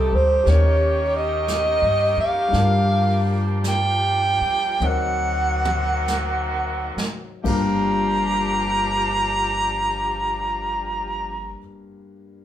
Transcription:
0.00 0.10 C2 soft
0.00 0.45 G3 soft
0.00 0.44 A3 medium
0.00 0.43 C4 medium
0.00 0.46 C4 soft
0.00 0.44 D#4 medium
0.00 0.45 D#4 soft
0.00 4.77 G4 medium
0.00 0.17 A4 medium
0.00 0.46 A4 soft
0.13 0.43 D2 medium
0.13 0.51 C5 medium
0.43 1.78 D#2 medium
0.43 2.50 D#3 medium
0.43 4.77 A#3 medium
0.43 2.50 C#4 medium
0.43 2.52 C#4 soft
0.43 2.53 D#4 soft
0.43 2.51 G4 soft
0.43 brush sweep soft
0.43 snare soft
0.48 2.54 A#4 soft
0.48 1.18 C#5 medium
1.16 2.18 D#5 medium
1.48 brush sweep soft
1.48 snare soft
1.48 hi-hat pedal soft
1.82 2.14 G2 medium
2.17 2.50 F#2 medium
2.17 3.40 F5 medium
2.48 4.79 G3 medium
2.48 4.81 D4 soft
2.48 4.78 D4 medium
2.52 4.37 G2 medium
2.52 4.79 F3 medium
2.52 4.82 F4 soft
2.52 brush sweep soft
2.52 snare soft
2.59 4.81 A#4 medium
3.64 brush sweep soft
3.64 snare soft
3.64 hi-hat pedal soft
3.68 4.87 G5 medium
4.41 muted upright bass stroke soft
4.80 6.93 D2 medium
4.80 7.26 D#3 medium
4.80 7.45 F#3 soft
4.80 7.26 A#3 medium
4.80 7.26 C4 medium
4.80 7.45 C4 soft
4.80 7.45 D#4 soft
4.80 7.26 F#4 medium
4.80 7.45 A#4 soft
4.80 mid tom soft
4.86 7.00 F#5 medium
5.65 mid tom soft
6.08 snare soft
6.08 hi-hat pedal soft
6.97 muted upright bass stroke soft
6.97 snare medium
7.43 11.53 G1 medium
7.43 11.57 G2 medium
7.43 11.53 F3 medium
7.43 11.57 G3 soft
7.43 11.58 A#3 soft
7.43 11.53 D4 medium
7.43 11.59 F4 medium
7.43 11.52 G4 medium
7.43 11.60 A#4 medium
7.43 kick soft
7.43 ride soft
7.48 11.57 A#5 medium

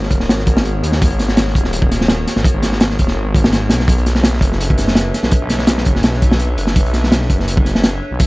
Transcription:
0.03 snare medium
0.11 0.27 D#1 loud
0.11 0.99 B3 loud
0.11 0.99 F#4 loud
0.11 0.99 G#4 medium
0.11 0.99 A#4 loud
0.11 0.99 C#5 loud
0.11 kick medium
0.11 closed hi-hat medium
0.20 snare soft
0.29 0.81 G#1 medium
0.29 snare loud
0.29 closed hi-hat medium
0.38 snare medium
0.47 kick loud
0.47 closed hi-hat medium
0.57 snare loud
0.65 closed hi-hat medium
0.83 1.09 D#2 loud
0.83 closed hi-hat medium
0.92 snare soft
1.00 1.53 B3 medium
1.00 1.53 F#4 medium
1.00 1.52 G#4 medium
1.00 1.53 A#4 medium
1.00 1.53 C#5 loud
1.00 kick loud
1.00 closed hi-hat medium
1.10 1.53 G#1 loud
1.10 closed hi-hat soft
1.19 snare soft
1.19 closed hi-hat medium
1.29 snare soft
1.37 snare loud
1.37 closed hi-hat medium
1.48 snare soft
1.54 2.25 D#1 loud
1.54 2.42 B3 loud
1.54 2.42 F#4 loud
1.54 2.42 G#4 medium
1.54 2.42 A#4 loud
1.54 2.42 C#5 loud
1.54 kick medium
1.54 closed hi-hat medium
1.64 snare soft
1.73 closed hi-hat medium
1.82 kick medium
1.91 snare soft
1.91 closed hi-hat medium
2.01 snare medium
2.08 snare loud
2.08 closed hi-hat medium
2.27 snare soft
2.27 closed hi-hat medium
2.36 2.44 G#1 loud
2.36 snare soft
2.44 2.96 B3 medium
2.44 2.97 F#4 medium
2.44 2.97 G#4 medium
2.44 2.96 A#4 medium
2.44 2.96 C#5 loud
2.44 kick loud
2.44 closed hi-hat medium
2.54 2.97 G#1 loud
2.63 snare medium
2.63 closed hi-hat medium
2.72 snare soft
2.81 snare loud
2.81 closed hi-hat medium
2.90 snare medium
2.99 3.15 D#1 medium
2.99 kick medium
2.99 closed hi-hat medium
3.08 snare soft
3.16 3.72 G#1 loud
3.35 kick loud
3.35 closed hi-hat medium
3.44 snare loud
3.53 snare loud
3.53 closed hi-hat medium
3.70 3.96 B1 medium
3.70 snare loud
3.70 closed hi-hat medium
3.80 snare medium
3.88 4.40 D4 medium
3.88 4.40 A4 medium
3.88 4.40 B4 medium
3.88 4.40 C#5 medium
3.88 4.40 E5 loud
3.88 kick loud
3.88 closed hi-hat medium
3.98 4.40 B1 loud
3.98 closed hi-hat soft
4.06 snare soft
4.06 closed hi-hat medium
4.15 snare soft
4.24 snare loud
4.24 closed hi-hat medium
4.33 snare soft
4.41 5.12 F#1 loud
4.41 5.30 D4 loud
4.41 5.30 A4 loud
4.41 5.30 B4 medium
4.41 5.30 C#5 loud
4.41 5.30 E5 loud
4.41 kick medium
4.41 closed hi-hat medium
4.52 snare soft
4.61 closed hi-hat medium
4.70 kick medium
4.78 snare soft
4.78 closed hi-hat medium
4.88 snare medium
4.95 snare loud
4.95 closed hi-hat medium
5.14 snare soft
5.14 closed hi-hat medium
5.23 5.31 B1 loud
5.23 snare soft
5.31 5.84 D4 medium
5.31 5.84 A4 medium
5.31 5.84 B4 medium
5.31 5.84 C#5 medium
5.31 5.84 E5 loud
5.31 kick loud
5.31 closed hi-hat medium
5.41 5.84 B1 loud
5.50 snare soft
5.50 closed hi-hat medium
5.59 snare soft
5.67 snare loud
5.67 closed hi-hat medium
5.78 snare medium
5.85 6.02 F#1 loud
5.85 6.73 D4 loud
5.85 6.73 A4 loud
5.85 6.73 B4 loud
5.85 6.73 C#5 medium
5.85 6.74 E5 loud
5.85 kick medium
5.85 closed hi-hat medium
5.95 snare soft
6.03 6.56 B1 medium
6.03 snare loud
6.03 closed hi-hat medium
6.13 snare soft
6.22 kick medium
6.22 closed hi-hat medium
6.31 snare loud
6.40 closed hi-hat medium
6.58 6.84 F#1 loud
6.58 closed hi-hat medium
6.67 snare soft
6.75 7.27 D4 medium
6.75 7.27 A4 medium
6.75 7.27 B4 medium
6.75 7.27 C#5 medium
6.75 7.27 E5 loud
6.75 kick loud
6.75 closed hi-hat medium
6.85 7.28 B1 loud
6.85 closed hi-hat soft
6.94 snare soft
6.94 closed hi-hat medium
7.04 snare soft
7.12 snare loud
7.12 closed hi-hat medium
7.21 snare soft
7.30 8.00 F#1 loud
7.30 8.17 D4 loud
7.30 8.17 A4 loud
7.30 8.17 B4 loud
7.30 8.17 C#5 medium
7.30 8.17 E5 loud
7.30 kick medium
7.30 closed hi-hat medium
7.40 snare soft
7.48 closed hi-hat medium
7.57 kick loud
7.65 snare soft
7.65 closed hi-hat medium
7.75 snare medium
7.84 snare loud
7.84 closed hi-hat medium
8.11 8.19 B1 loud
8.19 8.27 D4 medium
8.19 8.27 A4 medium
8.19 8.27 B4 medium
8.19 8.27 C#5 medium
8.19 8.27 E5 loud
8.19 kick loud
8.19 closed hi-hat medium

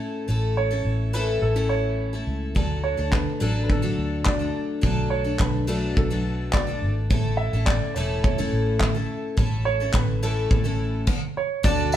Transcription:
0.00 0.27 A3 soft
0.00 0.27 C#4 soft
0.00 0.28 E4 soft
0.00 0.28 A4 soft
0.28 0.81 A1 medium
0.28 0.71 A3 medium
0.28 0.71 C#4 medium
0.28 0.70 E4 medium
0.28 0.69 A4 medium
0.57 1.10 C#5 medium
0.71 1.13 A3 soft
0.71 1.13 C#4 soft
0.71 1.14 E4 soft
0.71 1.13 A4 soft
0.85 1.38 A1 medium
1.13 1.56 A2 medium
1.13 1.56 E3 medium
1.13 1.56 A3 medium
1.13 1.55 C#4 medium
1.13 1.55 E4 medium
1.13 1.55 A4 medium
1.13 1.43 B4 medium
1.42 2.23 A1 medium
1.42 1.71 A4 medium
1.56 2.14 A2 medium
1.56 2.13 E3 soft
1.56 2.15 A3 medium
1.56 2.13 C#4 medium
1.56 2.13 E4 medium
1.56 2.13 A4 medium
1.69 2.23 C#5 medium
2.13 2.54 A3 soft
2.13 2.55 C#4 soft
2.13 2.56 E4 soft
2.13 2.56 A4 soft
2.27 2.53 C#2 medium
2.55 2.95 D2 medium
2.55 2.98 F#3 medium
2.55 2.98 A3 medium
2.55 2.97 D4 medium
2.55 2.96 A4 medium
2.55 kick medium
2.84 3.13 C#5 medium
2.97 3.25 D2 medium
2.97 3.40 A3 soft
2.97 3.40 D4 soft
2.97 3.41 A4 soft
3.12 3.39 B4 medium
3.12 kick medium
3.12 clap medium
3.40 3.94 A1 medium
3.40 3.83 D3 medium
3.40 3.82 F#3 medium
3.40 3.82 A3 medium
3.40 3.82 D4 medium
3.40 3.63 A4 medium
3.40 3.81 A4 medium
3.63 3.70 B4 medium
3.70 4.29 A4 medium
3.70 kick loud
3.82 5.67 D3 medium
3.82 4.81 F#3 soft
3.82 4.41 A3 medium
3.82 4.40 D4 medium
3.82 4.39 A4 medium
3.98 4.51 D2 medium
4.25 4.67 D5 medium
4.25 kick medium
4.25 clap medium
4.39 4.82 A3 soft
4.39 4.82 D4 soft
4.39 4.83 A4 soft
4.81 5.36 B1 medium
4.81 5.25 F#3 medium
4.81 5.26 A3 medium
4.81 5.24 D4 medium
4.81 5.23 A4 medium
4.81 kick medium
5.10 5.40 C#5 medium
5.24 5.67 A3 soft
5.24 5.68 D4 soft
5.24 5.68 A4 soft
5.39 5.93 B1 medium
5.39 5.69 B4 medium
5.39 kick medium
5.39 clap medium
5.67 6.11 B2 medium
5.67 6.10 F#3 medium
5.67 6.10 A3 medium
5.67 6.10 D4 medium
5.67 5.95 A4 medium
5.67 6.09 A4 medium
5.97 6.83 B1 medium
5.97 6.56 A4 medium
5.97 kick medium
6.10 6.68 B2 medium
6.10 6.68 F#3 medium
6.10 6.69 A3 medium
6.10 6.67 D4 medium
6.10 6.66 A4 medium
6.53 6.93 D5 medium
6.53 kick medium
6.53 clap medium
6.67 7.09 A3 soft
6.67 7.11 D4 soft
6.67 7.10 A4 soft
6.82 7.08 G#1 medium
7.10 7.50 A1 medium
7.10 7.53 A3 medium
7.10 7.53 C#4 medium
7.10 7.53 E4 medium
7.10 7.52 A4 medium
7.10 kick loud
7.37 7.67 E5 medium
7.53 7.79 A1 medium
7.53 7.95 A3 soft
7.53 7.96 C#4 soft
7.53 7.96 E4 soft
7.53 7.96 A4 soft
7.66 7.93 D5 medium
7.66 kick loud
7.66 clap medium
7.94 8.49 E1 medium
7.94 8.38 A2 medium
7.94 8.39 E3 medium
7.94 8.39 A3 medium
7.94 8.38 C#4 medium
7.94 8.38 E4 medium
7.94 8.37 A4 medium
7.94 8.22 C#5 medium
8.24 8.82 C#5 medium
8.24 kick loud
8.38 8.96 A2 medium
8.38 8.96 E3 soft
8.38 8.97 A3 medium
8.38 8.95 C#4 medium
8.38 8.94 E4 medium
8.38 8.94 A4 medium
8.52 9.05 A1 medium
8.80 9.20 E5 medium
8.80 kick medium
8.80 clap medium
8.95 9.36 A3 soft
8.95 9.37 C#4 soft
8.95 9.37 E4 soft
8.95 9.37 A4 soft
9.37 9.90 A1 medium
9.37 9.80 A3 medium
9.37 9.80 C#4 medium
9.37 9.80 E4 medium
9.37 9.79 A4 medium
9.37 kick medium
9.65 9.95 C#5 loud
9.80 10.22 A3 soft
9.80 10.22 C#4 soft
9.80 10.22 E4 soft
9.80 10.23 A4 soft
9.94 10.47 A1 medium
9.94 10.24 B4 medium
9.94 kick loud
9.94 clap medium
10.23 10.65 A2 medium
10.23 10.64 E3 medium
10.23 10.64 A3 medium
10.23 10.64 C#4 medium
10.23 10.63 E4 medium
10.23 11.04 A4 medium
10.23 10.63 A4 medium
10.51 11.05 A1 medium
10.51 kick loud
10.64 11.08 A2 medium
10.64 11.08 E3 medium
10.64 11.08 A3 soft
10.64 11.08 C#4 medium
10.64 11.07 E4 medium
10.64 11.07 A4 medium
11.07 kick medium
11.07 crash medium
11.37 11.66 C#5 medium
11.63 11.97 D2 loud
11.63 11.97 D3 medium
11.63 11.97 A3 medium
11.63 11.97 D4 medium
11.63 11.97 F#4 medium
11.63 11.97 A4 medium
11.63 11.94 D5 medium
11.63 kick loud
11.92 tambourine medium

